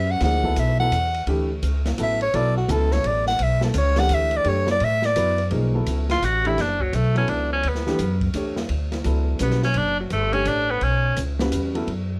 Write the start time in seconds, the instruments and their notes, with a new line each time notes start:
Already playing: upright bass F#2, upright piano C#4 F#4 G4 B4, soprano saxophone E5
0.11 soprano saxophone F#5
0.21 upright bass D2, upright piano F3 A#3 D#4 G#4, soprano saxophone F#5, snare, ride
0.43 upright piano F#3 B3 E4 A4, kick
0.56 upright bass B1, soprano saxophone E5, hi-hat pedal, ride
0.80 upright piano F#3 B3 E4 A4, soprano saxophone F#5
0.91 upright bass E2, hi-hat pedal, ride
1.14 ride
1.27 upright bass D2, upright piano E3 A3 D4 G4, ride
1.62 upright bass C#2, hi-hat pedal, ride
1.86 snare, ride
1.98 upright bass A1, upright piano F#3 B3 E4 A4, hi-hat pedal, ride
2.03 soprano saxophone E5
2.21 soprano saxophone C#5, ride
2.33 upright bass B1, upright piano F#3 B3 E4 A4, soprano saxophone D5, ride
2.57 soprano saxophone F#4
2.68 upright bass C#2, upright piano F#3 B3 E4 A4, soprano saxophone A4, hi-hat pedal, ride
2.91 soprano saxophone C#5, snare
3.04 upright bass A1, soprano saxophone D5, ride
3.27 soprano saxophone F#5, snare
3.39 upright bass B1, soprano saxophone E5, ride
3.61 soprano saxophone A4, snare
3.74 upright bass C#2, hi-hat pedal, ride
3.78 soprano saxophone C#5
3.96 upright piano E3 A3 D4 G4, soprano saxophone F#5, snare, ride
4.09 upright bass D2, hi-hat pedal, ride
4.14 soprano saxophone E5
4.31 ride
4.36 soprano saxophone D5
4.44 upright bass F#2, upright piano A3 D4 G4 C#5, ride
4.48 soprano saxophone C#5
4.67 snare
4.71 soprano saxophone D5
4.80 upright bass A2, ride
4.84 soprano saxophone E5
5.02 soprano saxophone D5, snare
5.16 upright bass F#2, upright piano F#3 B3 E4 B4, hi-hat pedal, ride
5.38 ride
5.51 upright bass B1, upright piano F3 A#3 D#4 G#4, ride
5.74 upright piano F#3 B3 E4 A4
5.86 upright bass C#2, hi-hat pedal, ride
6.10 tenor saxophone F4, snare, ride
6.22 upright bass A1, tenor saxophone F#4, hi-hat pedal, ride
6.45 upright piano E3 A3 D4 G4, tenor saxophone E4, ride
6.57 upright bass F#1, tenor saxophone D4, snare, ride
6.80 tenor saxophone F#3, kick
6.93 upright bass B1, tenor saxophone A3, hi-hat pedal, ride
7.15 upright piano F#3 B3 E4 A4, tenor saxophone C#4, ride
7.28 upright bass C#2, tenor saxophone D4, ride
7.53 tenor saxophone C#4
7.63 upright bass D2, ride
7.68 tenor saxophone B3
7.75 snare
7.87 upright piano E3 A3 D4 G4, snare
7.99 upright bass F#2, hi-hat pedal, ride
8.21 kick, ride
8.34 upright bass E2, upright piano A3 D4 G4 C#5, hi-hat pedal, ride
8.56 snare
8.69 upright bass D2, ride
8.92 snare, ride
9.04 upright bass C#2, upright piano F#3 B3 E4 A4, hi-hat pedal, ride
9.39 upright bass B1, upright piano G3 C#4 F#4 B4, tenor saxophone B3, hi-hat pedal, ride
9.51 snare
9.63 tenor saxophone C#4, snare
9.74 upright bass F#1, tenor saxophone D4, ride
10.00 tenor saxophone F#3
10.10 upright bass G1, tenor saxophone A3, hi-hat pedal, ride
10.32 upright piano A3 D4 G4 C#5, tenor saxophone C#4, ride
10.45 upright bass A1, tenor saxophone D4, hi-hat pedal, ride
10.70 tenor saxophone B3
10.81 upright bass B1, tenor saxophone C#4, ride
11.16 upright bass C#2, hi-hat pedal, ride
11.39 upright piano G3 C#4 F#4 B4, snare
11.52 upright bass E2, hi-hat pedal, ride
11.75 upright piano F#3 B3 E4 A4, ride
11.87 upright bass F#2, ride